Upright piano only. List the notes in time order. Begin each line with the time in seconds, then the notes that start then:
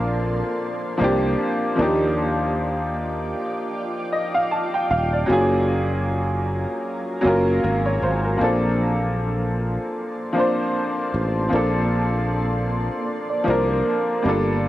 Already playing: F3 A#3 C4 D4 A#4
0.98 F3 A#3 C4
1.02 D4 G4
1.76 F3 A#3 D4
1.81 D#4 G4
4.13 D#5
4.35 F5
4.51 A5
4.74 G5
4.91 F5
5.13 D5
5.26 F#3 A#3 C#4
5.31 F4 G#4
7.21 F#3 A#3 C#4
7.26 F4 A#4
7.64 A#4
7.86 C#5
8.03 C5
8.24 A#4
8.37 F3 A#3 C4
8.42 D4 A4
10.33 F3 A#3 C4
10.37 D4 C5
11.49 F3 A#3 C4
11.54 D4 A4
13.44 F3 A#3 C4
13.49 D4 A#4
14.22 G3 A#3 D4
14.27 F4 A4